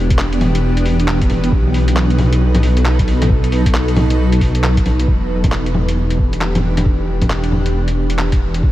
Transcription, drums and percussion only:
0.10 kick, closed hi-hat
0.19 clap
0.33 closed hi-hat
0.41 open hi-hat, low bongo
0.55 closed hi-hat
0.77 closed hi-hat
0.86 open hi-hat
1.00 closed hi-hat
1.08 clap
1.21 kick, closed hi-hat
1.30 open hi-hat, low bongo
1.44 closed hi-hat
1.52 kick
1.74 open hi-hat
1.88 closed hi-hat
1.96 clap
2.10 closed hi-hat
2.18 open hi-hat, low bongo
2.33 closed hi-hat
2.55 closed hi-hat, low bongo
2.63 open hi-hat
2.77 closed hi-hat
2.85 clap
2.99 kick, closed hi-hat
3.08 open hi-hat
3.22 closed hi-hat, low bongo
3.30 kick
3.44 closed hi-hat
3.52 open hi-hat
3.66 kick, closed hi-hat
3.74 clap
3.88 closed hi-hat
3.96 open hi-hat, low bongo
4.10 closed hi-hat
4.32 closed hi-hat
4.41 kick, open hi-hat
4.55 closed hi-hat
4.64 clap
4.77 kick, closed hi-hat
4.86 open hi-hat, low bongo
5.00 closed hi-hat
5.08 kick
5.44 kick, closed hi-hat, low bongo
5.52 clap
5.66 closed hi-hat
5.74 low bongo
5.89 closed hi-hat
6.10 closed hi-hat
6.19 kick
6.33 closed hi-hat
6.41 clap
6.55 closed hi-hat, low bongo
6.77 closed hi-hat, low bongo
6.86 kick
7.21 kick, closed hi-hat, low bongo
7.30 clap
7.44 closed hi-hat
7.52 low bongo
7.66 closed hi-hat
7.88 closed hi-hat
8.10 closed hi-hat
8.19 clap
8.32 kick, closed hi-hat
8.54 closed hi-hat
8.63 kick

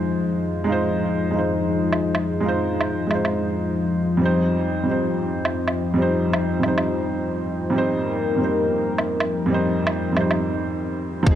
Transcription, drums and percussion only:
1.93 low woodblock
2.15 low woodblock
2.81 low woodblock
3.11 low woodblock
3.25 low woodblock
5.45 low woodblock
5.67 low woodblock
6.33 low woodblock
6.63 low woodblock
6.78 low woodblock
8.98 low woodblock
9.20 low woodblock
9.87 low woodblock
10.17 low woodblock
10.31 low woodblock
11.27 kick

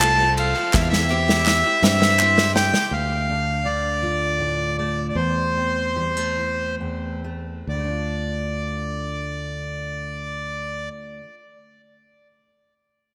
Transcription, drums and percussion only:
0.01 clap, ride
0.38 ride
0.56 clap
0.73 kick, snare, clap
0.92 snare, clap
1.29 snare
1.46 snare, clap
1.65 clap
1.84 snare
2.01 snare, clap
2.19 clap
2.38 snare, clap
2.56 snare
2.74 snare

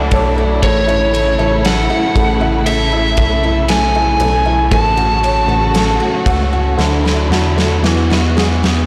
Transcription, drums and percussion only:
0.11 kick, ride
0.63 kick, ride
0.89 ride
1.14 ride
1.65 snare, ride
2.16 kick, ride
2.66 ride
3.17 kick, ride
3.69 snare, ride
4.20 ride
4.72 kick, ride
4.97 ride
5.24 ride
5.75 snare, ride
6.26 kick, ride
6.80 snare
7.06 snare
7.32 snare
7.59 snare
7.84 snare
8.12 snare
8.38 snare
8.64 snare

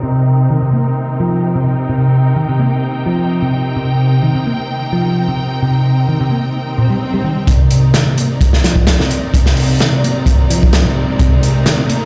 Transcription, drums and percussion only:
7.47 kick, closed hi-hat
7.71 closed hi-hat
7.94 snare, closed hi-hat
8.18 closed hi-hat
8.41 kick, closed hi-hat
8.53 snare
8.64 snare, closed hi-hat
8.76 kick
8.87 snare, closed hi-hat
9.00 snare
9.11 closed hi-hat
9.34 kick, closed hi-hat
9.46 snare
9.57 open hi-hat
9.80 snare, closed hi-hat
10.04 closed hi-hat
10.26 kick, closed hi-hat
10.50 closed hi-hat
10.63 kick
10.73 snare, closed hi-hat
11.19 kick, closed hi-hat
11.43 closed hi-hat
11.66 snare, closed hi-hat
11.89 closed hi-hat

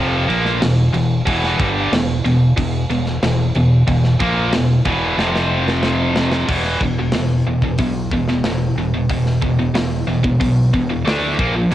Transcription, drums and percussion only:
0.30 crash
0.45 snare
0.62 snare, crash
0.94 crash
1.27 kick, crash
1.43 snare
1.60 kick, crash
1.93 snare, crash
2.26 crash
2.58 kick, crash
2.91 crash
3.06 snare
3.23 snare, crash
3.55 crash
3.88 kick, crash
4.04 snare
4.20 kick, crash
4.53 snare, crash
4.85 kick, crash
5.19 snare
5.35 snare
5.68 snare
5.83 snare
6.16 snare
6.31 snare
6.48 kick, crash
6.64 snare
6.81 kick
7.12 snare, open hi-hat
7.62 kick
7.78 kick, open hi-hat
8.11 kick
8.28 snare
8.44 snare, open hi-hat
9.09 kick, open hi-hat
9.26 snare
9.42 kick
9.75 snare, open hi-hat
10.24 kick
10.41 kick, open hi-hat
10.74 kick
11.07 snare, open hi-hat
11.39 kick
11.71 open hi-hat

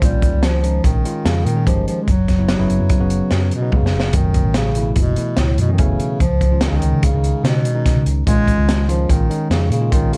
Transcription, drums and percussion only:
0.02 kick, closed hi-hat
0.22 kick, closed hi-hat
0.43 snare, closed hi-hat
0.64 closed hi-hat
0.84 kick, closed hi-hat
1.05 closed hi-hat
1.26 snare, closed hi-hat
1.46 closed hi-hat
1.67 kick, closed hi-hat
1.88 closed hi-hat
2.08 kick, closed hi-hat
2.28 kick, snare, closed hi-hat
2.49 snare, closed hi-hat
2.70 closed hi-hat
2.90 kick, closed hi-hat
3.10 closed hi-hat
3.31 snare, closed hi-hat
3.51 closed hi-hat
3.72 kick, high tom
3.86 snare
4.00 snare
4.13 kick, closed hi-hat
4.34 kick, closed hi-hat
4.54 snare, closed hi-hat
4.75 closed hi-hat
4.96 kick, closed hi-hat
5.16 closed hi-hat
5.37 snare, closed hi-hat
5.58 closed hi-hat
5.78 kick, closed hi-hat
6.00 closed hi-hat
6.20 kick, closed hi-hat
6.41 kick, closed hi-hat
6.61 snare, closed hi-hat
6.82 closed hi-hat
7.03 kick, closed hi-hat
7.24 closed hi-hat
7.45 snare, closed hi-hat
7.65 closed hi-hat
7.86 kick, snare, closed hi-hat
8.06 closed hi-hat
8.27 kick, closed hi-hat
8.48 kick, closed hi-hat
8.69 snare, closed hi-hat
8.89 closed hi-hat
9.10 kick, closed hi-hat
9.31 closed hi-hat
9.51 snare, closed hi-hat
9.72 closed hi-hat
9.92 kick, closed hi-hat
10.13 closed hi-hat

